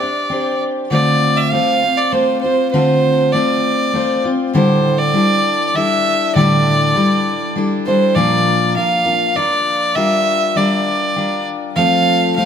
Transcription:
0.00 0.30 D4 soft
0.00 0.31 G4 soft
0.00 0.31 C5 soft
0.00 0.62 D5 medium
0.30 0.91 C4 soft
0.30 0.92 D4 soft
0.30 0.92 G4 soft
0.30 0.92 C5 soft
0.91 1.56 D3 medium
0.91 1.51 A3 medium
0.91 1.51 C4 medium
0.91 1.52 F4 medium
0.91 1.53 C5 medium
0.91 1.38 D5 medium
1.37 1.54 E5 medium
1.52 1.82 A3 soft
1.52 1.83 C4 soft
1.52 1.82 F4 soft
1.52 1.81 C5 soft
1.52 1.99 F5 medium
1.82 2.12 C4 soft
1.82 2.13 F4 soft
1.82 2.13 C5 soft
1.97 2.14 D5 medium
2.12 2.43 A3 soft
2.12 2.43 C4 soft
2.12 2.43 F4 medium
2.12 2.41 C5 medium
2.12 2.42 C5 medium
2.41 2.74 F4 soft
2.41 2.70 C5 medium
2.41 2.73 C5 soft
2.45 2.73 C4 soft
2.71 3.34 D3 medium
2.71 3.33 A3 medium
2.71 3.34 C4 medium
2.71 3.34 F4 medium
2.71 3.34 C5 medium
2.75 3.34 C5 medium
3.33 3.93 A3 soft
3.33 3.93 C4 medium
3.33 3.94 F4 medium
3.33 4.23 D5 medium
3.37 3.95 C5 soft
3.93 4.24 A3 soft
3.93 4.24 C4 soft
3.93 4.24 F4 medium
3.93 4.23 C5 medium
4.24 4.54 C4 soft
4.24 4.54 F4 soft
4.24 4.54 C5 soft
4.53 5.14 A2 medium
4.53 5.14 D3 medium
4.53 5.12 G3 medium
4.53 5.14 D4 medium
4.53 5.14 E4 medium
4.53 5.15 A4 medium
4.53 5.00 C5 medium
4.98 5.68 D5 medium
5.14 5.73 G3 soft
5.14 5.75 D4 medium
5.14 5.75 E4 medium
5.14 5.76 A4 soft
5.68 5.77 D5 medium
5.74 6.35 G3 soft
5.74 6.36 D4 soft
5.74 6.35 E4 medium
5.74 6.36 A4 medium
5.74 6.35 E5 medium
6.35 6.96 A2 medium
6.35 6.96 D3 medium
6.35 6.94 G3 medium
6.35 6.95 D4 medium
6.35 6.96 E4 medium
6.35 6.96 A4 medium
6.35 7.52 D5 medium
6.95 7.54 G3 medium
6.95 7.55 D4 soft
6.95 7.56 E4 medium
6.95 7.57 A4 medium
7.55 7.86 G3 medium
7.55 7.86 D4 medium
7.55 7.86 E4 medium
7.55 7.85 A4 medium
7.86 8.16 G3 soft
7.86 8.16 D4 soft
7.86 8.17 E4 soft
7.86 8.16 A4 soft
7.86 8.17 C5 medium
8.16 8.76 A#2 medium
8.16 9.99 F3 medium
8.16 8.75 A#3 medium
8.16 8.76 D4 medium
8.16 8.77 F4 medium
8.16 8.78 A#4 medium
8.16 8.76 D5 medium
8.76 9.06 A#3 soft
8.76 9.06 D4 medium
8.76 9.05 F4 medium
8.76 9.04 A#4 medium
8.76 9.38 F5 medium
9.05 9.34 A#3 soft
9.05 9.35 D4 soft
9.05 9.36 F4 soft
9.05 9.36 A#4 soft
9.35 9.95 A#3 soft
9.35 9.95 D4 soft
9.35 9.97 F4 medium
9.35 9.96 A#4 medium
9.35 9.97 D5 medium
9.96 10.55 G3 medium
9.96 10.56 D4 medium
9.96 10.57 F4 medium
9.96 10.57 A#4 medium
9.96 10.58 E5 medium
10.56 11.15 G3 soft
10.56 11.15 D4 medium
10.56 11.18 F4 medium
10.56 11.17 A#4 medium
10.56 11.47 D5 medium
11.16 11.77 G3 medium
11.16 11.77 D4 soft
11.16 11.77 F4 medium
11.16 11.78 A#4 medium
11.76 12.45 F3 medium
11.76 12.37 A3 medium
11.76 12.37 C4 medium
11.76 12.39 F4 medium
11.76 12.40 A4 medium
11.76 12.33 F5 loud
12.36 12.45 A3 medium
12.36 12.45 C4 medium
12.36 12.45 F4 medium
12.36 12.45 F5 medium
12.40 12.45 A4 medium

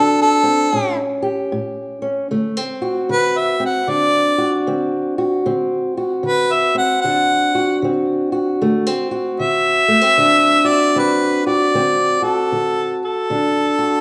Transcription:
0.00 0.67 D3 medium
0.00 0.42 C4 medium
0.00 0.69 D4 medium
0.00 1.22 F#4 medium
0.00 0.21 A4 loud
0.22 0.98 A4 loud
0.43 0.70 C4 medium
0.73 1.46 A2 medium
0.73 2.01 C#4 medium
1.22 2.27 G4 medium
1.52 2.25 A2 medium
2.02 2.28 C#4 medium
2.31 3.04 D3 medium
2.31 2.57 A3 medium
2.57 3.59 C4 soft
2.82 4.38 F#4 medium
3.09 3.82 D3 medium
3.09 3.39 B4 loud
3.38 3.62 E5 medium
3.60 4.67 C4 medium
3.65 3.91 F#5 medium
3.87 4.61 D3 medium
3.87 5.48 D4 medium
3.87 4.66 D5 loud
4.38 5.18 F#4 medium
4.67 5.40 D3 medium
4.67 5.45 C4 medium
5.18 5.97 F#4 medium
5.46 6.19 D3 medium
5.46 6.74 C4 medium
5.97 7.54 F#4 medium
6.23 6.97 D3 medium
6.23 6.54 B4 medium
6.53 6.77 E5 medium
6.75 7.84 C4 medium
6.75 7.01 F#5 medium
7.01 7.77 D3 medium
7.01 8.90 D4 medium
7.01 7.79 F#5 loud
7.55 8.32 F#4 medium
7.82 8.55 D3 medium
7.82 8.61 C4 medium
8.32 9.11 F#4 medium
8.62 9.34 D3 medium
8.62 8.87 A3 medium
8.87 9.88 C4 medium
9.11 10.63 F#4 medium
9.39 10.12 D3 medium
9.39 10.70 E5 loud
9.88 10.01 A3 medium
10.01 10.94 C4 soft
10.17 10.90 D3 medium
10.17 11.71 D4 medium
10.64 11.44 F#4 medium
10.64 11.00 D5 medium
10.95 11.68 D3 medium
10.95 11.71 C4 medium
10.95 11.45 B4 medium
11.47 12.21 F#4 medium
11.47 12.25 D5 medium
11.74 12.47 D3 medium
11.74 13.02 C4 medium
12.22 13.77 F#4 medium
12.22 12.99 A4 medium
12.52 13.25 D3 medium
13.05 14.01 A4 loud
13.30 14.01 D3 medium
13.30 14.01 D4 medium
13.78 14.01 F#4 medium

